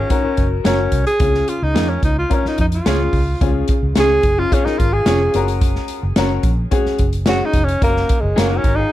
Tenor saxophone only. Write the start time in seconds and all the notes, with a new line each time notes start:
Already playing: C#4
0.65 C#4
1.07 G#4
1.49 F4
1.63 D#4
1.89 C#4
2.04 D#4
2.18 F4
2.34 C#4
2.47 D#4
2.61 D#4
2.74 F4
4.00 G#4
4.39 F4
4.53 C#4
4.65 D#4
4.78 F4
4.93 G#4
7.28 F#4
7.46 D#4
7.64 C#4
7.83 A#3
8.21 G#3
8.39 A#3
8.57 C#4
8.76 D#4